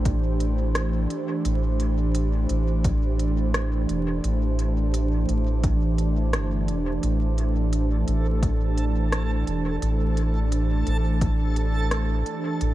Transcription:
Already playing: sub bass A1, analog synth pad E3 A3 D4 G4 C5
0.05 kick, closed hi-hat
0.40 closed hi-hat
0.75 cross-stick, closed hi-hat
1.10 closed hi-hat
1.45 sub bass A1, closed hi-hat
1.80 closed hi-hat
2.15 closed hi-hat
2.49 sub bass A1, closed hi-hat
2.84 kick, closed hi-hat
3.19 closed hi-hat
3.54 cross-stick, closed hi-hat
3.89 sub bass E1, closed hi-hat
4.24 sub bass A1, closed hi-hat
4.59 closed hi-hat
4.94 closed hi-hat
5.29 sub bass A1, closed hi-hat
5.64 kick, closed hi-hat
5.98 closed hi-hat
6.33 sub bass G1, cross-stick, closed hi-hat
6.68 sub bass E1, closed hi-hat
7.03 sub bass A1, synth texture A4, closed hi-hat
7.38 closed hi-hat
7.73 closed hi-hat
8.08 sub bass A1, closed hi-hat
8.43 kick, closed hi-hat
8.77 closed hi-hat
9.12 cross-stick, closed hi-hat
9.47 sub bass E1, closed hi-hat
9.82 sub bass A1, closed hi-hat
10.17 closed hi-hat
10.52 closed hi-hat
10.87 sub bass A1, closed hi-hat
11.21 kick, closed hi-hat
11.56 closed hi-hat
11.91 cross-stick, closed hi-hat
12.26 closed hi-hat
12.61 sub bass A1, closed hi-hat

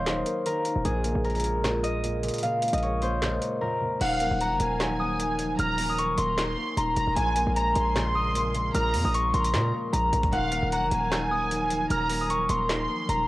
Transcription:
Already playing: 808-style bass D#1, grand piano D#3 A#3, analog synth pad D#3 F#3 A#4 F5, harp A#4 C5 D#5 F5
0.06 grand piano D#3, finger snap, snare, closed hi-hat
0.26 grand piano A#3, closed hi-hat
0.46 grand piano D#3, harp A#4, closed hi-hat
0.65 grand piano D#3, closed hi-hat
0.76 808-style bass D#1
0.85 808-style bass A#1, grand piano A#2, analog synth pad C#3 G#3 F4 A#4, harp G#4, closed hi-hat
1.04 grand piano A#3, closed hi-hat
1.15 808-style bass A#1
1.25 harp A#4, closed hi-hat
1.30 closed hi-hat
1.35 closed hi-hat
1.40 closed hi-hat
1.44 grand piano A#3, closed hi-hat
1.64 grand piano A#2, finger snap, snare, closed hi-hat
1.83 grand piano A#3, harp D#5, closed hi-hat
2.03 grand piano A#2, closed hi-hat
2.23 grand piano A#2, closed hi-hat
2.29 closed hi-hat
2.34 closed hi-hat
2.38 closed hi-hat
2.43 grand piano A#2, harp F5, closed hi-hat
2.62 grand piano A#3, closed hi-hat, open hi-hat
2.68 closed hi-hat
2.73 808-style bass A#1, harp D#5, closed hi-hat
2.78 closed hi-hat
2.83 harp C#5, closed hi-hat
3.02 grand piano A#3, harp C5, closed hi-hat
3.22 grand piano A#2, finger snap, snare, closed hi-hat
3.42 grand piano A#3, closed hi-hat
3.61 grand piano A#2, harp A#4
3.81 grand piano A#2
4.01 808-style bass D#1, analog synth pad D#3 F3 F#3 A#4, grand piano D#3, violin section F5, harp F#5, closed hi-hat, crash
4.20 grand piano A#3, closed hi-hat
4.31 808-style bass D#1
4.40 violin section F#5, harp A#5, closed hi-hat
4.51 808-style bass F#1
4.60 808-style bass D#1, grand piano A#3, violin section G#5, closed hi-hat
4.80 grand piano D#3, finger snap, snare, closed hi-hat
4.99 grand piano A#3, harp D#6
5.19 grand piano D#3, closed hi-hat
5.39 grand piano D#3, closed hi-hat
5.59 808-style bass D#1, grand piano D#3, violin section A#5, harp F6, closed hi-hat
5.78 grand piano A#3, open hi-hat
5.89 harp D#6
5.98 harp C#6, closed hi-hat
6.18 808-style bass D#1, grand piano A#3, harp C6, closed hi-hat
6.38 grand piano D#3, violin section C6, finger snap, snare, closed hi-hat
6.57 grand piano A#3
6.77 808-style bass D#1, grand piano D#3, harp A#5, closed hi-hat
6.97 808-style bass D#1, grand piano D#3, violin section A#5, closed hi-hat
7.07 808-style bass D#1
7.16 808-style bass A#1, grand piano A#2, analog synth pad C#3 F3 G#3, harp G#5, violin section G#5, closed hi-hat
7.36 grand piano A#3, closed hi-hat
7.47 808-style bass A#1
7.56 violin section A#5, harp A#5, closed hi-hat
7.76 808-style bass A#1, grand piano A#3, violin section C6, closed hi-hat
7.95 grand piano A#2, finger snap, snare, closed hi-hat
8.15 grand piano A#3, harp D#6
8.35 grand piano A#2, closed hi-hat
8.55 grand piano A#2, closed hi-hat
8.75 808-style bass A#1, grand piano A#2, violin section A#5, harp F6, closed hi-hat
8.94 808-style bass F2, grand piano A#3, open hi-hat
9.05 808-style bass A#1, harp D#6
9.14 harp C#6, closed hi-hat
9.34 808-style bass A#1, grand piano A#3, harp C6, closed hi-hat
9.44 closed hi-hat
9.54 808-style bass A#2, grand piano A#2, finger snap, snare, closed hi-hat
9.73 grand piano A#3
9.93 808-style bass A#1, grand piano A#2, harp A#5, closed hi-hat
10.13 808-style bass A#1, grand piano A#2, closed hi-hat
10.23 kick, closed hi-hat
10.32 808-style bass D#1, grand piano D#3, analog synth pad D#3 F#3, violin section F5, harp F#5, closed hi-hat
10.52 grand piano A#3, closed hi-hat
10.63 808-style bass D#1
10.72 violin section F#5, harp A#5, closed hi-hat
10.82 808-style bass F#1
10.91 808-style bass D#1, grand piano A#3, violin section G#5, closed hi-hat
11.12 grand piano D#3, finger snap, snare, closed hi-hat
11.31 grand piano A#3, harp D#6
11.51 grand piano D#3, closed hi-hat
11.70 grand piano D#3, closed hi-hat
11.90 808-style bass D#1, grand piano D#3, violin section A#5, harp F6, closed hi-hat
12.10 grand piano A#3, open hi-hat
12.21 harp D#6
12.30 harp C#6, closed hi-hat
12.49 808-style bass D#1, grand piano A#3, harp C6, closed hi-hat
12.69 grand piano D#3, violin section C6, finger snap, snare, closed hi-hat
12.89 grand piano A#3
13.09 808-style bass D#1, grand piano D#3, harp A#5, closed hi-hat

